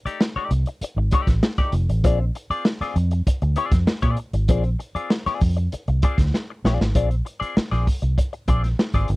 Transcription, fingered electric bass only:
0.05 muted fingered electric bass stroke soft
0.36 muted fingered electric bass stroke soft
0.51 0.64 C2 loud
0.81 muted fingered electric bass stroke soft
0.96 1.09 G#1 medium
1.27 1.40 A1 medium
1.73 1.86 F1 loud
1.89 2.04 A1 medium
2.04 2.29 A#1 loud
2.50 muted fingered electric bass stroke soft
2.81 muted fingered electric bass stroke soft
2.96 3.21 F2 loud
3.27 muted fingered electric bass stroke soft
3.42 3.55 D2 medium
3.72 3.85 F2 medium
4.02 4.15 A#2 medium
4.33 4.46 G#1 medium
4.49 4.74 A#1 medium
4.95 muted fingered electric bass stroke soft
5.26 muted fingered electric bass stroke soft
5.42 5.67 F2 medium
5.73 muted fingered electric bass stroke soft
5.88 6.00 C2 medium
6.18 6.30 D2 medium
6.64 6.77 A#1 medium
6.79 6.92 G#1 medium
6.95 7.20 A#1 loud
7.41 muted fingered electric bass stroke soft
7.57 muted fingered electric bass stroke medium
7.72 7.84 A#1 medium
8.02 8.15 C2 medium
8.48 8.73 A#1 medium
8.94 9.06 G#1 medium
9.10 9.16 G1 loud

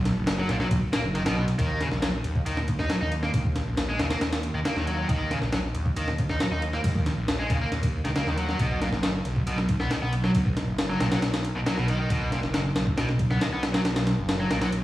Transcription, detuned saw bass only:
0.00 0.12 B1 loud
0.17 0.45 F#1 medium
0.49 0.66 B1 loud
0.71 0.80 B1 medium
1.04 1.27 F#1 loud
1.26 1.54 B1 loud
1.59 1.87 D#2 loud
1.91 2.20 A#1 medium
2.24 2.41 D#2 medium
2.46 2.75 D#2 medium
2.79 2.87 D#2 medium
3.01 3.30 D#2 loud
3.34 3.62 D#2 loud
3.67 3.95 A#1 medium
4.00 4.16 D#2 medium
4.21 4.50 D#2 medium
4.54 4.62 D#2 medium
4.76 5.05 D#2 loud
5.09 5.38 D#2 loud
5.42 5.70 A#1 medium
5.74 5.91 D#2 loud
5.96 6.25 D#2 medium
6.29 6.38 D#2 medium
6.51 6.80 D#2 loud
6.84 7.13 D#2 loud
7.17 7.46 A#1 medium
7.50 7.67 D#2 loud
7.72 8.01 D#2 medium
8.05 8.21 C#2 medium
8.27 8.55 D#2 medium
8.59 8.88 B1 loud
8.93 9.21 F#1 medium
9.25 9.42 B1 loud
9.47 9.76 B1 medium
9.80 9.88 B1 medium
10.02 10.30 B1 loud
10.35 10.63 B1 loud
10.68 10.96 F#1 medium
11.00 11.17 B1 medium
11.22 11.51 B1 medium
11.55 11.63 B1 medium
11.78 12.06 B1 loud
12.10 12.39 B1 loud
12.43 12.71 F#1 medium
12.76 12.92 B1 loud
12.98 13.26 B1 medium
13.31 13.39 B1 medium
13.53 13.81 B1 loud
13.85 14.14 B1 loud
14.18 14.47 F#1 medium
14.51 14.67 B1 loud
14.72 14.84 B1 medium

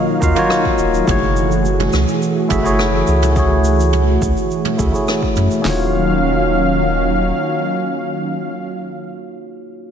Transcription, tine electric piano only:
0.00 0.20 A#3 medium
0.00 0.21 D#4 medium
0.00 0.22 F4 medium
0.00 0.23 F#4 medium
0.00 0.39 C#5 loud
0.20 0.32 A#3 medium
0.20 0.33 D#4 medium
0.20 0.33 F4 medium
0.20 0.34 F#4 medium
0.20 0.34 F5 loud
0.35 0.62 A#3 medium
0.35 0.62 D#4 medium
0.35 0.63 F4 medium
0.35 0.63 F#4 medium
0.35 0.64 C#5 loud
1.04 2.46 A3 medium
1.04 2.47 E4 medium
1.04 2.48 F#4 medium
1.09 2.48 G#4 medium
1.09 2.49 C#5 medium
2.48 2.61 A3 medium
2.48 2.61 E4 medium
2.48 2.61 F#4 medium
2.48 2.62 G#4 medium
2.48 2.62 E5 loud
2.63 2.90 A3 medium
2.63 2.90 E4 medium
2.63 2.91 F#4 medium
2.63 2.91 G#4 medium
2.63 2.92 C#5 medium
3.32 4.74 A3 medium
3.32 4.75 E4 medium
3.32 4.76 F#4 medium
3.38 4.77 G#4 medium
3.38 4.78 C#5 medium
4.77 4.89 A3 medium
4.77 4.90 E4 medium
4.77 4.90 F#4 medium
4.77 4.91 G#4 medium
4.77 4.91 E5 medium
4.92 5.19 A3 medium
4.92 5.19 E4 medium
4.92 5.20 F#4 medium
4.92 5.20 G#4 medium
4.92 5.20 C#5 medium
5.60 9.04 A#3 medium
5.60 9.06 D#4 medium
5.65 9.09 F4 medium
5.65 9.11 F#4 medium
5.70 9.14 C#5 medium

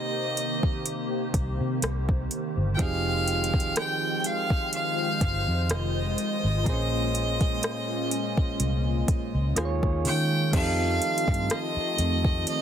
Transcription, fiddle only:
0.00 0.87 D#5 medium
2.75 2.83 G5 medium
2.81 3.77 F5 loud
3.78 4.20 G5 loud
4.20 4.28 G5 medium
4.26 4.74 F5 loud
4.75 5.73 F5 loud
5.71 9.57 D#5 loud
10.07 10.51 G5 loud
10.55 11.54 F5 loud
11.52 12.48 D#5 loud
12.49 12.62 D#5 loud

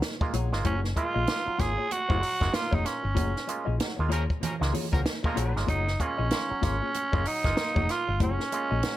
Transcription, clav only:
0.21 0.33 G#3 medium
0.21 0.33 A#3 medium
0.21 0.33 F4 medium
0.34 0.52 F#3 medium
0.52 0.65 G#3 medium
0.52 0.65 A#3 medium
0.52 0.65 F4 medium
0.65 0.83 F#3 medium
0.96 1.15 G#3 medium
0.96 1.14 A#3 medium
0.96 1.14 F4 medium
1.15 1.20 A#3 soft
1.15 1.20 F4 soft
1.28 1.46 A#3 medium
1.28 1.47 F4 medium
1.47 1.59 F#3 medium
1.60 1.78 A#3 medium
1.60 1.78 F4 medium
2.09 2.22 G#3 medium
2.09 2.22 A#3 medium
2.09 2.22 F4 medium
2.22 2.41 F#3 medium
2.41 2.53 G#3 medium
2.41 2.53 A#3 medium
2.41 2.53 F4 medium
2.54 2.72 A#3 medium
2.54 2.72 F4 medium
2.73 2.85 F#3 medium
2.85 3.03 A#3 medium
2.85 3.03 F4 medium
3.17 3.35 F#3 medium
3.36 3.41 A#3 soft
3.36 3.41 F4 soft
3.48 3.66 G#3 medium
3.48 3.67 A#3 medium
3.48 3.67 F4 medium
3.80 3.98 F#3 medium
3.99 4.11 G#3 medium
3.99 4.10 A#3 medium
3.99 4.10 F4 medium
4.12 4.19 A#3 soft
4.12 4.19 F4 soft
4.61 4.73 G#3 medium
4.61 4.74 A#3 medium
4.61 4.74 F4 medium
4.93 5.05 F#3 medium
5.25 5.37 G#3 medium
5.25 5.37 A#3 medium
5.25 5.37 F4 medium
5.38 5.56 F#3 medium
5.56 5.68 G#3 medium
5.56 5.68 A#3 medium
5.56 5.68 F4 medium
5.69 5.87 F#3 medium
6.00 6.18 G#3 medium
6.00 6.18 A#3 medium
6.00 6.18 F4 loud
6.19 6.24 A#3 soft
6.19 6.24 F4 soft
6.32 6.50 A#3 medium
6.32 6.50 F4 medium
6.51 6.63 F#3 medium
6.63 6.81 A#3 medium
6.63 6.82 F4 medium
7.13 7.25 G#3 medium
7.13 7.26 A#3 medium
7.13 7.26 F4 medium
7.26 7.44 F#3 medium
7.44 7.57 G#3 medium
7.44 7.56 A#3 medium
7.44 7.56 F4 medium
7.57 7.75 A#3 medium
7.57 7.76 F4 medium
7.76 7.89 F#3 medium
7.89 8.07 A#3 medium
7.89 8.08 F4 medium
8.21 8.39 F#3 medium
8.40 8.45 A#3 soft
8.40 8.45 F4 soft
8.52 8.70 G#3 medium
8.52 8.71 A#3 medium
8.52 8.71 F4 medium
8.84 8.97 F#3 soft

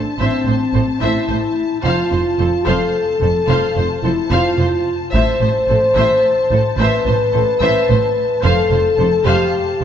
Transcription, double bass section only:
0.20 0.28 A1 medium
0.47 0.55 A1 soft
0.75 0.83 A1 soft
1.02 1.10 A1 medium
1.29 1.37 A1 soft
1.85 1.93 F1 medium
2.12 2.20 F1 soft
2.40 2.48 F1 soft
2.67 2.75 F1 soft
3.22 3.30 F1 soft
3.49 3.57 F1 medium
3.76 3.84 F1 soft
4.04 4.12 F1 soft
4.31 4.39 F1 medium
4.59 4.67 F1 soft
5.14 5.22 A1 medium
5.41 5.49 A1 soft
5.68 5.76 A1 soft
5.96 6.04 A1 medium
6.51 6.59 A1 soft
6.79 6.87 A1 medium
7.07 7.15 A1 soft
7.35 7.43 A1 soft
7.62 7.70 A1 medium
7.90 7.98 A1 soft
8.44 8.52 F1 medium
8.71 8.79 F1 soft
8.99 9.07 F1 soft
9.26 9.34 F1 medium

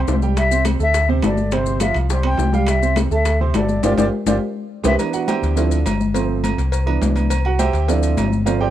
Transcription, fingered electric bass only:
0.07 0.74 C2 medium
0.79 1.20 D2 loud
1.23 1.90 G1 medium
1.95 2.35 C2 loud
2.38 3.05 C2 loud
3.10 3.51 D2 loud
3.54 3.81 G1 medium
3.83 3.94 G1 medium
3.97 4.08 G1 medium
4.26 4.37 G1 loud
4.84 4.95 C2 medium
5.42 5.83 D2 loud
5.85 6.52 G1 medium
6.58 6.98 C2 medium
7.01 7.68 C2 loud
7.73 8.14 D2 loud
8.17 8.70 G1 medium

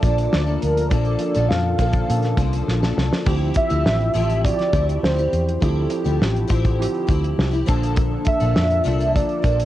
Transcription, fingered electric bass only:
0.03 0.26 A#1 medium
0.33 0.56 D2 medium
0.63 0.92 D2 medium
0.91 1.15 A#1 loud
1.36 1.48 A#1 loud
1.50 1.74 F2 loud
1.79 2.03 A#1 medium
2.10 2.33 A#2 loud
2.37 2.61 C2 medium
2.68 2.92 A#1 medium
2.98 3.09 C2 medium
3.27 3.50 D2 loud
3.71 3.83 D2 loud
3.86 4.09 A1 medium
4.15 4.50 A1 loud
4.73 4.97 D2 loud
5.03 5.27 D2 medium
5.33 5.56 E2 medium
5.62 5.86 D2 loud
6.06 6.18 D2 medium
6.21 6.44 A1 medium
6.50 6.86 A1 medium
7.09 7.33 D2 medium
7.38 7.62 C2 medium
7.69 8.15 A#1 medium
8.42 8.53 A#1 medium
8.57 8.80 F2 loud
8.85 9.21 C2 medium
9.44 9.65 A#1 medium

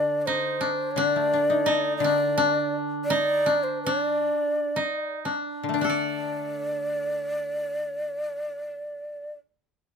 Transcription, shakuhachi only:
0.00 0.22 D5 medium
0.22 0.27 D5 medium
0.26 0.93 C5 medium
0.91 1.96 D5 loud
1.97 2.75 D5 loud
3.05 3.65 D5 loud
3.63 3.83 C5 medium
3.83 4.02 C#5 medium
4.02 5.18 D5 medium
5.77 9.32 D5 medium

